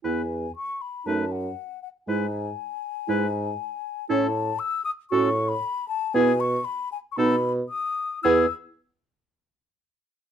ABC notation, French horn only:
X:1
M:4/4
L:1/8
Q:1/4=117
K:E
V:1 name="French horn"
B, z3 A, z3 | G, z3 G, z3 | C z3 C z3 | B, z3 B, z3 |
B, z6 z |]